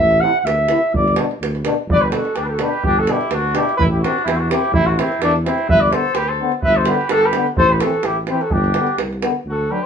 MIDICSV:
0, 0, Header, 1, 7, 480
1, 0, Start_track
1, 0, Key_signature, 1, "major"
1, 0, Tempo, 478088
1, 931, Time_signature, 2, 2, 24, 8
1, 4766, Tempo, 470958
1, 9976, End_track
2, 0, Start_track
2, 0, Title_t, "Flugelhorn"
2, 0, Program_c, 0, 56
2, 0, Note_on_c, 0, 76, 104
2, 207, Note_on_c, 0, 78, 103
2, 222, Note_off_c, 0, 76, 0
2, 393, Note_off_c, 0, 78, 0
2, 393, Note_on_c, 0, 78, 75
2, 453, Note_on_c, 0, 76, 94
2, 468, Note_off_c, 0, 78, 0
2, 933, Note_off_c, 0, 76, 0
2, 954, Note_on_c, 0, 74, 81
2, 1167, Note_off_c, 0, 74, 0
2, 1929, Note_on_c, 0, 74, 117
2, 2025, Note_on_c, 0, 71, 85
2, 2040, Note_off_c, 0, 74, 0
2, 2116, Note_off_c, 0, 71, 0
2, 2122, Note_on_c, 0, 69, 75
2, 2365, Note_on_c, 0, 67, 85
2, 2380, Note_off_c, 0, 69, 0
2, 2449, Note_on_c, 0, 71, 58
2, 2464, Note_off_c, 0, 67, 0
2, 2505, Note_on_c, 0, 69, 75
2, 2520, Note_off_c, 0, 71, 0
2, 2623, Note_on_c, 0, 71, 88
2, 2638, Note_off_c, 0, 69, 0
2, 2858, Note_off_c, 0, 71, 0
2, 2865, Note_on_c, 0, 67, 106
2, 2998, Note_on_c, 0, 69, 95
2, 3013, Note_off_c, 0, 67, 0
2, 3124, Note_on_c, 0, 67, 78
2, 3139, Note_off_c, 0, 69, 0
2, 3347, Note_on_c, 0, 66, 94
2, 3362, Note_off_c, 0, 67, 0
2, 3568, Note_on_c, 0, 67, 87
2, 3583, Note_off_c, 0, 66, 0
2, 3781, Note_off_c, 0, 67, 0
2, 3787, Note_on_c, 0, 71, 121
2, 3850, Note_off_c, 0, 71, 0
2, 3929, Note_on_c, 0, 67, 68
2, 4017, Note_off_c, 0, 67, 0
2, 4023, Note_on_c, 0, 66, 83
2, 4253, Note_off_c, 0, 66, 0
2, 4259, Note_on_c, 0, 64, 95
2, 4384, Note_on_c, 0, 66, 69
2, 4399, Note_off_c, 0, 64, 0
2, 4533, Note_on_c, 0, 67, 94
2, 4548, Note_off_c, 0, 66, 0
2, 4748, Note_off_c, 0, 67, 0
2, 4754, Note_on_c, 0, 64, 126
2, 4886, Note_on_c, 0, 66, 95
2, 4902, Note_off_c, 0, 64, 0
2, 5004, Note_on_c, 0, 64, 99
2, 5019, Note_off_c, 0, 66, 0
2, 5247, Note_off_c, 0, 64, 0
2, 5257, Note_on_c, 0, 62, 106
2, 5364, Note_off_c, 0, 62, 0
2, 5483, Note_on_c, 0, 64, 92
2, 5711, Note_off_c, 0, 64, 0
2, 5730, Note_on_c, 0, 76, 127
2, 5845, Note_on_c, 0, 74, 101
2, 5861, Note_off_c, 0, 76, 0
2, 5959, Note_on_c, 0, 72, 80
2, 5974, Note_off_c, 0, 74, 0
2, 6217, Note_on_c, 0, 71, 101
2, 6232, Note_off_c, 0, 72, 0
2, 6334, Note_on_c, 0, 72, 70
2, 6349, Note_off_c, 0, 71, 0
2, 6579, Note_off_c, 0, 72, 0
2, 6698, Note_on_c, 0, 76, 112
2, 6830, Note_on_c, 0, 72, 91
2, 6845, Note_off_c, 0, 76, 0
2, 6947, Note_on_c, 0, 71, 93
2, 6962, Note_off_c, 0, 72, 0
2, 7184, Note_on_c, 0, 69, 117
2, 7200, Note_off_c, 0, 71, 0
2, 7325, Note_on_c, 0, 71, 89
2, 7341, Note_off_c, 0, 69, 0
2, 7555, Note_off_c, 0, 71, 0
2, 7653, Note_on_c, 0, 72, 127
2, 7794, Note_on_c, 0, 71, 83
2, 7809, Note_off_c, 0, 72, 0
2, 7890, Note_on_c, 0, 69, 85
2, 7906, Note_off_c, 0, 71, 0
2, 8133, Note_on_c, 0, 67, 92
2, 8149, Note_off_c, 0, 69, 0
2, 8262, Note_off_c, 0, 67, 0
2, 8382, Note_on_c, 0, 71, 75
2, 8503, Note_on_c, 0, 69, 79
2, 8518, Note_off_c, 0, 71, 0
2, 8614, Note_on_c, 0, 67, 93
2, 8629, Note_off_c, 0, 69, 0
2, 9091, Note_off_c, 0, 67, 0
2, 9615, Note_on_c, 0, 69, 79
2, 9826, Note_on_c, 0, 71, 76
2, 9841, Note_off_c, 0, 69, 0
2, 9941, Note_on_c, 0, 72, 79
2, 9957, Note_off_c, 0, 71, 0
2, 9976, Note_off_c, 0, 72, 0
2, 9976, End_track
3, 0, Start_track
3, 0, Title_t, "Trumpet"
3, 0, Program_c, 1, 56
3, 1940, Note_on_c, 1, 71, 94
3, 2059, Note_on_c, 1, 67, 49
3, 2074, Note_off_c, 1, 71, 0
3, 2152, Note_off_c, 1, 67, 0
3, 2175, Note_on_c, 1, 66, 77
3, 2401, Note_on_c, 1, 62, 80
3, 2416, Note_off_c, 1, 66, 0
3, 2486, Note_on_c, 1, 67, 51
3, 2501, Note_off_c, 1, 62, 0
3, 2546, Note_on_c, 1, 66, 50
3, 2561, Note_off_c, 1, 67, 0
3, 2649, Note_on_c, 1, 67, 70
3, 2664, Note_off_c, 1, 66, 0
3, 2871, Note_off_c, 1, 67, 0
3, 2884, Note_on_c, 1, 62, 90
3, 3012, Note_on_c, 1, 66, 72
3, 3027, Note_off_c, 1, 62, 0
3, 3119, Note_on_c, 1, 64, 79
3, 3134, Note_off_c, 1, 66, 0
3, 3348, Note_on_c, 1, 62, 84
3, 3363, Note_off_c, 1, 64, 0
3, 3592, Note_on_c, 1, 64, 68
3, 3607, Note_off_c, 1, 62, 0
3, 3819, Note_off_c, 1, 64, 0
3, 3825, Note_on_c, 1, 64, 95
3, 3879, Note_off_c, 1, 64, 0
3, 3958, Note_on_c, 1, 64, 60
3, 4045, Note_off_c, 1, 64, 0
3, 4051, Note_on_c, 1, 62, 79
3, 4272, Note_off_c, 1, 62, 0
3, 4293, Note_on_c, 1, 60, 76
3, 4417, Note_on_c, 1, 62, 63
3, 4432, Note_off_c, 1, 60, 0
3, 4513, Note_on_c, 1, 64, 73
3, 4528, Note_off_c, 1, 62, 0
3, 4759, Note_off_c, 1, 64, 0
3, 4765, Note_on_c, 1, 60, 88
3, 4890, Note_on_c, 1, 62, 67
3, 4905, Note_off_c, 1, 60, 0
3, 5017, Note_on_c, 1, 60, 81
3, 5032, Note_off_c, 1, 62, 0
3, 5245, Note_off_c, 1, 60, 0
3, 5251, Note_on_c, 1, 57, 94
3, 5359, Note_off_c, 1, 57, 0
3, 5486, Note_on_c, 1, 60, 78
3, 5713, Note_off_c, 1, 60, 0
3, 5729, Note_on_c, 1, 71, 112
3, 5865, Note_off_c, 1, 71, 0
3, 5865, Note_on_c, 1, 71, 59
3, 5969, Note_on_c, 1, 69, 93
3, 5984, Note_off_c, 1, 71, 0
3, 6192, Note_on_c, 1, 67, 107
3, 6208, Note_off_c, 1, 69, 0
3, 6334, Note_on_c, 1, 69, 84
3, 6349, Note_off_c, 1, 67, 0
3, 6579, Note_off_c, 1, 69, 0
3, 6676, Note_on_c, 1, 71, 99
3, 6807, Note_on_c, 1, 69, 77
3, 6822, Note_off_c, 1, 71, 0
3, 6923, Note_on_c, 1, 67, 80
3, 6938, Note_off_c, 1, 69, 0
3, 7149, Note_on_c, 1, 62, 94
3, 7165, Note_off_c, 1, 67, 0
3, 7290, Note_on_c, 1, 67, 76
3, 7306, Note_off_c, 1, 62, 0
3, 7537, Note_off_c, 1, 67, 0
3, 7654, Note_on_c, 1, 69, 104
3, 7778, Note_on_c, 1, 67, 67
3, 7793, Note_off_c, 1, 69, 0
3, 7889, Note_on_c, 1, 66, 73
3, 7905, Note_off_c, 1, 67, 0
3, 8138, Note_on_c, 1, 64, 85
3, 8153, Note_off_c, 1, 66, 0
3, 8264, Note_off_c, 1, 64, 0
3, 8378, Note_on_c, 1, 67, 68
3, 8511, Note_on_c, 1, 66, 61
3, 8526, Note_off_c, 1, 67, 0
3, 8609, Note_on_c, 1, 62, 88
3, 8625, Note_off_c, 1, 66, 0
3, 9089, Note_off_c, 1, 62, 0
3, 9597, Note_on_c, 1, 66, 72
3, 9833, Note_on_c, 1, 67, 71
3, 9849, Note_off_c, 1, 66, 0
3, 9976, Note_off_c, 1, 67, 0
3, 9976, End_track
4, 0, Start_track
4, 0, Title_t, "Euphonium"
4, 0, Program_c, 2, 58
4, 221, Note_on_c, 2, 64, 61
4, 315, Note_off_c, 2, 64, 0
4, 704, Note_on_c, 2, 64, 69
4, 797, Note_off_c, 2, 64, 0
4, 1187, Note_on_c, 2, 62, 64
4, 1280, Note_off_c, 2, 62, 0
4, 1662, Note_on_c, 2, 62, 74
4, 1756, Note_off_c, 2, 62, 0
4, 2152, Note_on_c, 2, 62, 49
4, 2244, Note_off_c, 2, 62, 0
4, 2619, Note_on_c, 2, 62, 70
4, 2713, Note_off_c, 2, 62, 0
4, 3101, Note_on_c, 2, 62, 65
4, 3195, Note_off_c, 2, 62, 0
4, 3561, Note_on_c, 2, 62, 68
4, 3659, Note_off_c, 2, 62, 0
4, 4059, Note_on_c, 2, 60, 60
4, 4153, Note_off_c, 2, 60, 0
4, 4537, Note_on_c, 2, 60, 67
4, 4630, Note_off_c, 2, 60, 0
4, 5008, Note_on_c, 2, 60, 59
4, 5105, Note_off_c, 2, 60, 0
4, 5486, Note_on_c, 2, 60, 62
4, 5584, Note_off_c, 2, 60, 0
4, 5967, Note_on_c, 2, 59, 49
4, 6064, Note_off_c, 2, 59, 0
4, 6461, Note_on_c, 2, 59, 68
4, 6556, Note_off_c, 2, 59, 0
4, 6925, Note_on_c, 2, 59, 63
4, 7023, Note_off_c, 2, 59, 0
4, 7419, Note_on_c, 2, 59, 73
4, 7515, Note_off_c, 2, 59, 0
4, 7901, Note_on_c, 2, 60, 60
4, 7995, Note_off_c, 2, 60, 0
4, 8377, Note_on_c, 2, 60, 72
4, 8472, Note_off_c, 2, 60, 0
4, 8871, Note_on_c, 2, 59, 57
4, 8963, Note_off_c, 2, 59, 0
4, 9330, Note_on_c, 2, 59, 65
4, 9425, Note_off_c, 2, 59, 0
4, 9817, Note_on_c, 2, 62, 49
4, 9910, Note_off_c, 2, 62, 0
4, 9976, End_track
5, 0, Start_track
5, 0, Title_t, "Trombone"
5, 0, Program_c, 3, 57
5, 219, Note_on_c, 3, 48, 78
5, 313, Note_off_c, 3, 48, 0
5, 700, Note_on_c, 3, 48, 56
5, 794, Note_off_c, 3, 48, 0
5, 1172, Note_on_c, 3, 47, 75
5, 1269, Note_off_c, 3, 47, 0
5, 1662, Note_on_c, 3, 47, 68
5, 1756, Note_off_c, 3, 47, 0
5, 2118, Note_on_c, 3, 47, 67
5, 2217, Note_off_c, 3, 47, 0
5, 2612, Note_on_c, 3, 47, 60
5, 2708, Note_off_c, 3, 47, 0
5, 3097, Note_on_c, 3, 47, 73
5, 3192, Note_off_c, 3, 47, 0
5, 3562, Note_on_c, 3, 47, 69
5, 3660, Note_off_c, 3, 47, 0
5, 4036, Note_on_c, 3, 48, 67
5, 4134, Note_off_c, 3, 48, 0
5, 4503, Note_on_c, 3, 48, 60
5, 4603, Note_off_c, 3, 48, 0
5, 4985, Note_on_c, 3, 48, 57
5, 5086, Note_off_c, 3, 48, 0
5, 5484, Note_on_c, 3, 48, 46
5, 5582, Note_off_c, 3, 48, 0
5, 5966, Note_on_c, 3, 50, 64
5, 6064, Note_off_c, 3, 50, 0
5, 6454, Note_on_c, 3, 50, 57
5, 6550, Note_off_c, 3, 50, 0
5, 6944, Note_on_c, 3, 50, 76
5, 7038, Note_off_c, 3, 50, 0
5, 7436, Note_on_c, 3, 50, 73
5, 7528, Note_off_c, 3, 50, 0
5, 7911, Note_on_c, 3, 52, 76
5, 8003, Note_off_c, 3, 52, 0
5, 8406, Note_on_c, 3, 52, 61
5, 8495, Note_off_c, 3, 52, 0
5, 8876, Note_on_c, 3, 50, 62
5, 8967, Note_off_c, 3, 50, 0
5, 9342, Note_on_c, 3, 50, 45
5, 9435, Note_off_c, 3, 50, 0
5, 9820, Note_on_c, 3, 54, 65
5, 9913, Note_off_c, 3, 54, 0
5, 9976, End_track
6, 0, Start_track
6, 0, Title_t, "Tuba"
6, 0, Program_c, 4, 58
6, 0, Note_on_c, 4, 33, 119
6, 228, Note_off_c, 4, 33, 0
6, 439, Note_on_c, 4, 38, 92
6, 707, Note_off_c, 4, 38, 0
6, 931, Note_on_c, 4, 31, 127
6, 1196, Note_off_c, 4, 31, 0
6, 1412, Note_on_c, 4, 38, 97
6, 1676, Note_off_c, 4, 38, 0
6, 1880, Note_on_c, 4, 31, 105
6, 2148, Note_off_c, 4, 31, 0
6, 2375, Note_on_c, 4, 38, 80
6, 2638, Note_off_c, 4, 38, 0
6, 2847, Note_on_c, 4, 31, 111
6, 3112, Note_off_c, 4, 31, 0
6, 3317, Note_on_c, 4, 38, 89
6, 3584, Note_off_c, 4, 38, 0
6, 3796, Note_on_c, 4, 33, 107
6, 4063, Note_off_c, 4, 33, 0
6, 4269, Note_on_c, 4, 40, 82
6, 4537, Note_off_c, 4, 40, 0
6, 4746, Note_on_c, 4, 33, 115
6, 5017, Note_off_c, 4, 33, 0
6, 5228, Note_on_c, 4, 40, 95
6, 5499, Note_off_c, 4, 40, 0
6, 5715, Note_on_c, 4, 31, 120
6, 5985, Note_off_c, 4, 31, 0
6, 6196, Note_on_c, 4, 38, 70
6, 6466, Note_off_c, 4, 38, 0
6, 6701, Note_on_c, 4, 31, 119
6, 6963, Note_off_c, 4, 31, 0
6, 7167, Note_on_c, 4, 31, 77
6, 7433, Note_off_c, 4, 31, 0
6, 7647, Note_on_c, 4, 33, 127
6, 7912, Note_off_c, 4, 33, 0
6, 8120, Note_on_c, 4, 33, 72
6, 8387, Note_off_c, 4, 33, 0
6, 8601, Note_on_c, 4, 31, 127
6, 8867, Note_off_c, 4, 31, 0
6, 9082, Note_on_c, 4, 36, 76
6, 9347, Note_off_c, 4, 36, 0
6, 9557, Note_on_c, 4, 38, 93
6, 9822, Note_off_c, 4, 38, 0
6, 9976, End_track
7, 0, Start_track
7, 0, Title_t, "Davul"
7, 108, Note_on_c, 9, 37, 28
7, 208, Note_off_c, 9, 37, 0
7, 471, Note_on_c, 9, 37, 77
7, 571, Note_off_c, 9, 37, 0
7, 688, Note_on_c, 9, 37, 69
7, 788, Note_off_c, 9, 37, 0
7, 948, Note_on_c, 9, 43, 75
7, 1048, Note_off_c, 9, 43, 0
7, 1080, Note_on_c, 9, 37, 29
7, 1168, Note_off_c, 9, 37, 0
7, 1168, Note_on_c, 9, 37, 83
7, 1268, Note_off_c, 9, 37, 0
7, 1315, Note_on_c, 9, 37, 26
7, 1415, Note_off_c, 9, 37, 0
7, 1435, Note_on_c, 9, 37, 75
7, 1535, Note_off_c, 9, 37, 0
7, 1556, Note_on_c, 9, 37, 28
7, 1653, Note_off_c, 9, 37, 0
7, 1653, Note_on_c, 9, 37, 79
7, 1754, Note_off_c, 9, 37, 0
7, 1908, Note_on_c, 9, 43, 99
7, 2008, Note_off_c, 9, 43, 0
7, 2130, Note_on_c, 9, 37, 84
7, 2230, Note_off_c, 9, 37, 0
7, 2260, Note_on_c, 9, 37, 26
7, 2360, Note_off_c, 9, 37, 0
7, 2365, Note_on_c, 9, 37, 66
7, 2465, Note_off_c, 9, 37, 0
7, 2598, Note_on_c, 9, 37, 75
7, 2699, Note_off_c, 9, 37, 0
7, 2744, Note_on_c, 9, 37, 22
7, 2844, Note_off_c, 9, 37, 0
7, 2848, Note_on_c, 9, 43, 85
7, 2948, Note_off_c, 9, 43, 0
7, 3085, Note_on_c, 9, 37, 72
7, 3186, Note_off_c, 9, 37, 0
7, 3221, Note_on_c, 9, 37, 27
7, 3321, Note_off_c, 9, 37, 0
7, 3321, Note_on_c, 9, 37, 80
7, 3422, Note_off_c, 9, 37, 0
7, 3561, Note_on_c, 9, 37, 76
7, 3661, Note_off_c, 9, 37, 0
7, 3705, Note_on_c, 9, 37, 31
7, 3806, Note_off_c, 9, 37, 0
7, 3818, Note_on_c, 9, 43, 101
7, 3918, Note_off_c, 9, 43, 0
7, 4061, Note_on_c, 9, 37, 75
7, 4161, Note_off_c, 9, 37, 0
7, 4201, Note_on_c, 9, 37, 29
7, 4295, Note_off_c, 9, 37, 0
7, 4295, Note_on_c, 9, 37, 83
7, 4395, Note_off_c, 9, 37, 0
7, 4529, Note_on_c, 9, 37, 86
7, 4630, Note_off_c, 9, 37, 0
7, 4664, Note_on_c, 9, 37, 29
7, 4756, Note_on_c, 9, 43, 107
7, 4764, Note_off_c, 9, 37, 0
7, 4857, Note_off_c, 9, 43, 0
7, 4903, Note_on_c, 9, 37, 28
7, 5005, Note_off_c, 9, 37, 0
7, 5013, Note_on_c, 9, 37, 88
7, 5115, Note_off_c, 9, 37, 0
7, 5146, Note_on_c, 9, 37, 33
7, 5244, Note_off_c, 9, 37, 0
7, 5244, Note_on_c, 9, 37, 85
7, 5346, Note_off_c, 9, 37, 0
7, 5387, Note_on_c, 9, 37, 30
7, 5489, Note_off_c, 9, 37, 0
7, 5497, Note_on_c, 9, 37, 80
7, 5599, Note_off_c, 9, 37, 0
7, 5616, Note_on_c, 9, 37, 32
7, 5718, Note_off_c, 9, 37, 0
7, 5730, Note_on_c, 9, 43, 109
7, 5832, Note_off_c, 9, 43, 0
7, 5967, Note_on_c, 9, 37, 75
7, 6069, Note_off_c, 9, 37, 0
7, 6100, Note_on_c, 9, 37, 24
7, 6193, Note_off_c, 9, 37, 0
7, 6193, Note_on_c, 9, 37, 83
7, 6295, Note_off_c, 9, 37, 0
7, 6570, Note_on_c, 9, 37, 27
7, 6672, Note_off_c, 9, 37, 0
7, 6679, Note_on_c, 9, 43, 78
7, 6781, Note_off_c, 9, 43, 0
7, 6914, Note_on_c, 9, 37, 82
7, 7016, Note_off_c, 9, 37, 0
7, 7072, Note_on_c, 9, 37, 32
7, 7157, Note_off_c, 9, 37, 0
7, 7157, Note_on_c, 9, 37, 92
7, 7259, Note_off_c, 9, 37, 0
7, 7397, Note_on_c, 9, 37, 71
7, 7499, Note_off_c, 9, 37, 0
7, 7534, Note_on_c, 9, 37, 31
7, 7636, Note_off_c, 9, 37, 0
7, 7642, Note_on_c, 9, 43, 94
7, 7743, Note_off_c, 9, 43, 0
7, 7883, Note_on_c, 9, 37, 93
7, 7985, Note_off_c, 9, 37, 0
7, 8020, Note_on_c, 9, 37, 24
7, 8113, Note_off_c, 9, 37, 0
7, 8113, Note_on_c, 9, 37, 77
7, 8215, Note_off_c, 9, 37, 0
7, 8356, Note_on_c, 9, 37, 60
7, 8457, Note_off_c, 9, 37, 0
7, 8501, Note_on_c, 9, 37, 26
7, 8596, Note_on_c, 9, 43, 81
7, 8603, Note_off_c, 9, 37, 0
7, 8698, Note_off_c, 9, 43, 0
7, 8734, Note_on_c, 9, 37, 25
7, 8836, Note_off_c, 9, 37, 0
7, 8836, Note_on_c, 9, 37, 75
7, 8938, Note_off_c, 9, 37, 0
7, 8965, Note_on_c, 9, 37, 31
7, 9067, Note_off_c, 9, 37, 0
7, 9085, Note_on_c, 9, 37, 81
7, 9187, Note_off_c, 9, 37, 0
7, 9229, Note_on_c, 9, 37, 28
7, 9330, Note_off_c, 9, 37, 0
7, 9330, Note_on_c, 9, 37, 81
7, 9431, Note_off_c, 9, 37, 0
7, 9976, End_track
0, 0, End_of_file